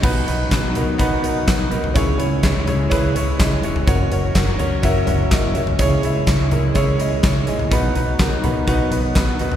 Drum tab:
CC |x---------------|----------------|----------------|----------------|
HH |--x-x-x-x-x-x-x-|x-x-x-x-x-x-x-x-|x-x-x-x-x-x-x-x-|x-x-x-x-x-x-x-x-|
CP |----x-------x---|----x-------x---|----x-------x---|----x-------x---|
SD |----o-------o---|----o-------o---|----o-------o---|----o-------o---|
FT |------o--------o|------o--------o|------o---o----o|------o--------o|
BD |o---o---o---o---|o---o---o---o---|o---o---o---o---|o---o---o---o---|

CC |----------------|
HH |x-x-x-x-x-x-x-x-|
CP |----x-------x---|
SD |----o-------o---|
FT |------o--------o|
BD |o---o---o---o---|